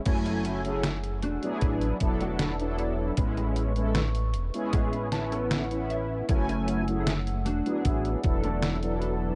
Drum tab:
CC |x---------------|----------------|----------------|
HH |xxxxxxxxxxxxxxx-|xxxxxxxxxxxxxxx-|xxxxxxxxxxxxxxx-|
SD |----o-------o---|----o-----o-o---|----o-------o---|
BD |o-------o-o-----|o-------o-------|o-------o-o-----|